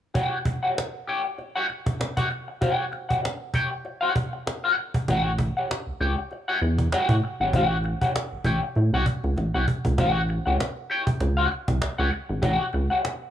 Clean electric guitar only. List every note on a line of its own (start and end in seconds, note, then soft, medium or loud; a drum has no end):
0.14 0.37 G4 medium
0.14 0.38 C#5 medium
0.14 0.38 F#5 medium
0.46 muted clean electric guitar stroke soft
0.63 0.75 G4 soft
0.63 0.76 C#5 soft
0.63 0.76 F#5 medium
0.77 muted clean electric guitar stroke soft
1.07 1.26 G4 medium
1.07 1.25 C#5 medium
1.07 1.24 G5 medium
1.25 muted clean electric guitar stroke soft
1.38 muted clean electric guitar stroke soft
1.56 1.67 G4 medium
1.56 1.68 C#5 medium
1.56 1.69 F#5 medium
1.69 muted clean electric guitar stroke soft
1.86 muted clean electric guitar stroke soft
2.00 muted clean electric guitar stroke soft
2.17 2.29 G4 medium
2.17 2.30 C#5 medium
2.17 2.30 F#5 medium
2.31 muted clean electric guitar stroke soft
2.48 muted clean electric guitar stroke soft
2.61 2.84 G4 medium
2.61 2.85 C#5 medium
2.61 2.85 F#5 medium
2.92 muted clean electric guitar stroke soft
3.09 3.22 G4 soft
3.09 3.22 C#5 soft
3.09 3.23 F#5 medium
3.23 muted clean electric guitar stroke soft
3.54 3.72 G4 medium
3.54 3.71 C#5 medium
3.54 3.71 G5 medium
3.71 muted clean electric guitar stroke soft
3.85 muted clean electric guitar stroke soft
4.01 4.14 G4 medium
4.01 4.15 C#5 medium
4.01 4.15 F#5 medium
4.33 muted clean electric guitar stroke soft
4.46 muted clean electric guitar stroke soft
4.64 4.76 G4 medium
4.64 4.77 C#5 medium
4.64 4.78 F#5 medium
4.78 muted clean electric guitar stroke soft
4.96 muted clean electric guitar stroke soft
5.09 5.31 G4 medium
5.09 5.31 C#5 medium
5.09 5.32 F#5 medium
5.40 muted clean electric guitar stroke soft
5.57 5.69 G4 soft
5.57 5.70 C#5 medium
5.57 5.70 F#5 medium
5.70 muted clean electric guitar stroke soft
6.01 6.19 G4 medium
6.01 6.18 C#5 medium
6.01 6.18 G5 medium
6.18 muted clean electric guitar stroke soft
6.32 muted clean electric guitar stroke soft
6.48 6.60 G4 medium
6.48 6.61 C#5 medium
6.48 6.62 F#5 medium
6.79 muted clean electric guitar stroke soft
6.92 7.15 G4 medium
6.92 7.15 C#5 medium
6.92 7.15 F#5 loud
7.24 muted clean electric guitar stroke soft
7.41 7.53 G4 medium
7.41 7.54 C#5 medium
7.41 7.55 F#5 medium
7.54 7.76 G4 medium
7.54 7.77 C#5 medium
7.54 7.77 F#5 medium
7.85 muted clean electric guitar stroke soft
8.01 8.13 G4 medium
8.01 8.14 C#5 medium
8.01 8.15 F#5 medium
8.14 muted clean electric guitar stroke soft
8.45 8.63 G4 medium
8.45 8.63 C#5 medium
8.45 8.63 G5 medium
8.63 muted clean electric guitar stroke soft
8.77 muted clean electric guitar stroke soft
8.94 9.06 G4 medium
8.94 9.07 C#5 medium
8.94 9.07 F#5 medium
9.24 muted clean electric guitar stroke soft
9.37 muted clean electric guitar stroke soft
9.54 9.67 G4 medium
9.54 9.67 C#5 medium
9.54 9.68 F#5 medium
9.85 muted clean electric guitar stroke soft
9.98 10.20 G4 medium
9.98 10.21 C#5 medium
9.98 10.21 F#5 loud
10.29 muted clean electric guitar stroke soft
10.46 10.58 G4 soft
10.46 10.59 C#5 medium
10.46 10.59 F#5 medium
10.59 muted clean electric guitar stroke soft
10.90 11.08 G4 medium
10.90 11.06 C#5 medium
10.90 11.06 G5 medium
11.06 muted clean electric guitar stroke soft
11.20 muted clean electric guitar stroke soft
11.37 11.49 G4 medium
11.37 11.50 C#5 medium
11.37 11.50 F#5 medium
11.51 muted clean electric guitar stroke soft
11.68 muted clean electric guitar stroke medium
11.81 muted clean electric guitar stroke soft
11.98 12.11 G4 medium
11.98 12.12 C#5 medium
11.98 12.12 F#5 medium
12.13 muted clean electric guitar stroke soft
12.29 muted clean electric guitar stroke soft
12.42 12.65 G4 medium
12.42 12.65 C#5 medium
12.42 12.66 F#5 medium
12.73 muted clean electric guitar stroke soft
12.90 13.03 G4 soft
12.90 13.03 C#5 soft
12.90 13.04 F#5 medium
13.04 muted clean electric guitar stroke soft